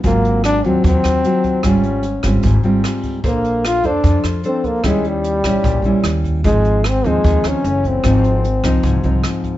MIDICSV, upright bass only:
0, 0, Header, 1, 2, 480
1, 0, Start_track
1, 0, Tempo, 400000
1, 52, Time_signature, 4, 2, 24, 8
1, 11492, End_track
2, 0, Start_track
2, 0, Title_t, "Upright bass"
2, 0, Program_c, 0, 32
2, 49, Note_on_c, 0, 32, 94
2, 723, Note_off_c, 0, 32, 0
2, 772, Note_on_c, 0, 39, 77
2, 996, Note_off_c, 0, 39, 0
2, 1005, Note_on_c, 0, 39, 104
2, 1232, Note_off_c, 0, 39, 0
2, 1253, Note_on_c, 0, 39, 91
2, 1476, Note_off_c, 0, 39, 0
2, 1966, Note_on_c, 0, 32, 86
2, 2642, Note_off_c, 0, 32, 0
2, 2685, Note_on_c, 0, 32, 79
2, 2913, Note_off_c, 0, 32, 0
2, 2920, Note_on_c, 0, 32, 102
2, 3150, Note_off_c, 0, 32, 0
2, 3159, Note_on_c, 0, 32, 76
2, 3390, Note_off_c, 0, 32, 0
2, 3891, Note_on_c, 0, 34, 89
2, 4565, Note_off_c, 0, 34, 0
2, 4603, Note_on_c, 0, 41, 73
2, 4832, Note_off_c, 0, 41, 0
2, 4844, Note_on_c, 0, 41, 102
2, 5072, Note_off_c, 0, 41, 0
2, 5083, Note_on_c, 0, 41, 83
2, 5312, Note_off_c, 0, 41, 0
2, 5810, Note_on_c, 0, 39, 85
2, 6485, Note_off_c, 0, 39, 0
2, 6531, Note_on_c, 0, 34, 80
2, 6756, Note_off_c, 0, 34, 0
2, 6768, Note_on_c, 0, 34, 109
2, 6979, Note_off_c, 0, 34, 0
2, 6986, Note_on_c, 0, 34, 79
2, 7111, Note_off_c, 0, 34, 0
2, 7244, Note_on_c, 0, 39, 91
2, 7695, Note_off_c, 0, 39, 0
2, 7733, Note_on_c, 0, 32, 97
2, 8405, Note_off_c, 0, 32, 0
2, 8451, Note_on_c, 0, 39, 86
2, 8675, Note_off_c, 0, 39, 0
2, 8688, Note_on_c, 0, 39, 105
2, 8914, Note_off_c, 0, 39, 0
2, 8926, Note_on_c, 0, 39, 86
2, 9041, Note_off_c, 0, 39, 0
2, 9170, Note_on_c, 0, 30, 94
2, 9617, Note_off_c, 0, 30, 0
2, 9644, Note_on_c, 0, 32, 95
2, 10319, Note_off_c, 0, 32, 0
2, 10363, Note_on_c, 0, 36, 86
2, 10590, Note_off_c, 0, 36, 0
2, 10600, Note_on_c, 0, 36, 105
2, 10828, Note_off_c, 0, 36, 0
2, 10847, Note_on_c, 0, 36, 85
2, 11072, Note_off_c, 0, 36, 0
2, 11492, End_track
0, 0, End_of_file